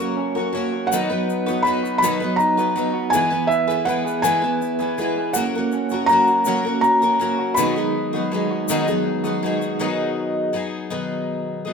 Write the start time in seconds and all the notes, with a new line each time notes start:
Already playing: F#3 C#6
0.00 A#3 C#4 F#4 A#4
0.17 C#4
0.35 F#4 A#4
0.39 C#4
0.53 F#3 A#3 C#4 F#4
0.57 A#4
0.73 F#4
0.87 F#5
0.91 B2 D#3 F#3 B3 D#4 B4, shaker
1.10 F#3 B3 D#4 B4
1.28 D#4, shaker
1.46 F#3 B3 D#4 F#4 B4, shaker
1.62 F#3 B3 B5
1.67 D#4 B4, shaker
1.83 F#4, shaker
1.98 B2 B5
2.02 D#3 F#3 B3 D#4 B4, shaker
2.20 F#3 B3 D#4 B4
2.36 D#4 A#5, shaker
2.57 F#3 B3 D#4 F#4 B4, shaker
2.76 F#3 B3 D#4 B4, shaker
2.94 F#4
3.10 E3 G#3 B3 G#5, shaker
3.15 E4 B4
3.31 B3 E4 B4
3.47 E4 E5, shaker
3.67 B3 E4 G#4 B4, shaker
3.85 G#3 B3 E4 B4 F#5, shaker
4.05 G#4, shaker
4.22 E3 G#3 B3 E4 B4 G#5, shaker
4.42 B3 E4 B4
4.62 E4, shaker
4.79 B3 E4 G#4 B4, shaker
4.98 G#3 B3 E4 B4, shaker
5.18 G#4
5.33 F#3 A#3 C#4 F#4 F#5, shaker
5.38 A#4
5.54 A#3 F#4 A#4
5.59 C#4
5.72 C#4, shaker
5.89 F#4 A#4, shaker
5.94 C#4 F#4
6.06 F#3 A#3 A#5, shaker
6.10 C#4 F#4 A#4
6.27 F#4, shaker
6.45 F#3 A#3 C#4 F#4 A#4, shaker
6.65 A#3 C#4 F#4 A#4
6.81 C#4 A#5, shaker
7.02 C#4 F#4 A#4, shaker
7.19 F#3 A#3 C#4 F#4 A#4, shaker
7.39 F#4
7.54 B2 D#3 F#3 B5, shaker
7.59 B3 D#4 G#4
7.76 F#3 G#3 B3 D#4 G#4
7.95 D#4
8.13 F#3 B3 D#4 F#4 G#4
8.32 F#3 G#3 B3 D#4 G#4
8.51 F#4
8.68 B2 D#3 F#3 B3 D#4 G#4, shaker
8.87 F#3 G#3 B3 D#4 G#4, shaker
9.05 D#4
9.24 F#3 B3 D#4 F#4 G#4, shaker
9.42 F#3 G#3 B3 D#4 G#4
9.60 F#4, shaker
9.79 B2 D#3 F#3 B3 D#4 G#4
10.53 F#3 B3 D#4 G#4
10.90 B2 D#3 F#3 B3 D#4 G#4
11.65 F#3 B3 D#4 G#4